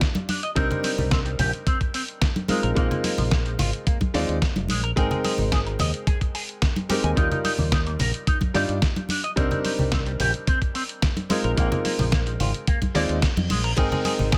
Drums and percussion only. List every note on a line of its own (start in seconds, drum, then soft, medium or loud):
0.01 kick loud
0.01 snare loud
0.01 closed hi-hat medium
0.15 closed hi-hat soft
0.15 high conga loud
0.29 open hi-hat loud
0.29 high conga medium
0.43 closed hi-hat soft
0.56 kick loud
0.56 closed hi-hat medium
0.71 closed hi-hat soft
0.71 low conga medium
0.83 open hi-hat loud
0.83 high conga medium
0.98 low conga medium
1.11 kick loud
1.11 snare loud
1.11 closed hi-hat medium
1.26 closed hi-hat soft
1.39 open hi-hat loud
1.39 low conga loud
1.53 closed hi-hat soft
1.67 kick loud
1.67 closed hi-hat medium
1.81 kick medium
1.81 closed hi-hat soft
1.94 open hi-hat loud
2.08 closed hi-hat soft
2.21 kick loud
2.21 snare loud
2.21 closed hi-hat medium
2.36 closed hi-hat soft
2.36 high conga loud
2.48 open hi-hat loud
2.48 high conga medium
2.63 closed hi-hat soft
2.77 kick loud
2.77 closed hi-hat medium
2.91 closed hi-hat soft
2.91 low conga medium
3.04 open hi-hat loud
3.04 high conga medium
3.18 open hi-hat medium
3.18 low conga medium
3.31 kick loud
3.31 snare loud
3.31 closed hi-hat medium
3.46 closed hi-hat soft
3.59 open hi-hat loud
3.59 low conga medium
3.73 closed hi-hat soft
3.87 kick loud
3.87 closed hi-hat medium
4.01 kick medium
4.01 closed hi-hat soft
4.01 high conga medium
4.14 snare medium
4.14 open hi-hat loud
4.29 closed hi-hat soft
4.42 kick loud
4.42 snare loud
4.42 closed hi-hat medium
4.56 closed hi-hat soft
4.56 high conga medium
4.68 open hi-hat loud
4.68 high conga medium
4.84 closed hi-hat soft
4.97 kick loud
4.97 closed hi-hat medium
5.11 closed hi-hat soft
5.11 low conga medium
5.24 open hi-hat loud
5.24 high conga medium
5.38 low conga medium
5.52 kick loud
5.52 snare loud
5.52 closed hi-hat medium
5.67 closed hi-hat soft
5.79 open hi-hat loud
5.79 low conga medium
5.94 closed hi-hat soft
6.07 kick loud
6.07 closed hi-hat medium
6.21 kick medium
6.21 closed hi-hat soft
6.35 open hi-hat medium
6.49 closed hi-hat soft
6.62 kick loud
6.62 snare loud
6.62 closed hi-hat medium
6.76 closed hi-hat soft
6.76 high conga medium
6.90 open hi-hat loud
6.90 high conga medium
7.04 closed hi-hat soft
7.17 kick loud
7.17 closed hi-hat medium
7.32 closed hi-hat soft
7.32 low conga medium
7.45 open hi-hat loud
7.45 high conga medium
7.58 low conga medium
7.72 kick loud
7.72 snare loud
7.72 closed hi-hat medium
7.87 closed hi-hat soft
7.99 open hi-hat loud
7.99 low conga medium
8.14 closed hi-hat soft
8.27 kick loud
8.27 closed hi-hat medium
8.41 kick medium
8.41 closed hi-hat soft
8.41 high conga medium
8.55 snare medium
8.55 open hi-hat medium
8.69 closed hi-hat soft
8.82 kick loud
8.82 snare loud
8.82 closed hi-hat medium
8.96 closed hi-hat soft
8.96 high conga medium
9.09 open hi-hat loud
9.09 high conga medium
9.24 closed hi-hat soft
9.37 kick loud
9.37 closed hi-hat medium
9.51 closed hi-hat soft
9.51 low conga medium
9.65 open hi-hat loud
9.65 high conga medium
9.79 low conga medium
9.92 kick loud
9.92 snare loud
9.92 closed hi-hat medium
10.06 closed hi-hat soft
10.20 open hi-hat loud
10.20 low conga medium
10.34 closed hi-hat soft
10.47 kick loud
10.47 closed hi-hat loud
10.62 kick medium
10.62 closed hi-hat soft
10.75 open hi-hat medium
10.89 closed hi-hat soft
11.02 kick loud
11.02 snare loud
11.02 closed hi-hat medium
11.17 closed hi-hat soft
11.17 high conga medium
11.30 open hi-hat loud
11.30 high conga medium
11.44 closed hi-hat soft
11.57 kick loud
11.57 closed hi-hat medium
11.72 closed hi-hat soft
11.72 low conga loud
11.85 open hi-hat loud
11.85 high conga medium
11.99 open hi-hat medium
11.99 low conga medium
12.12 kick loud
12.12 snare loud
12.12 closed hi-hat medium
12.27 closed hi-hat soft
12.40 open hi-hat medium
12.40 low conga medium
12.54 closed hi-hat soft
12.67 kick loud
12.67 closed hi-hat loud
12.82 kick medium
12.82 closed hi-hat soft
12.82 high conga medium
12.95 snare medium
12.95 open hi-hat loud
13.09 closed hi-hat soft
13.22 kick loud
13.22 snare loud
13.22 closed hi-hat loud
13.37 closed hi-hat soft
13.37 high conga medium
13.50 open hi-hat medium
13.50 high conga medium
13.64 closed hi-hat soft
13.78 kick loud
13.78 closed hi-hat loud
13.78 crash medium
13.92 closed hi-hat soft
13.92 low conga medium
14.05 open hi-hat loud
14.05 high conga medium
14.19 low conga medium
14.32 kick loud
14.32 snare loud
14.32 closed hi-hat medium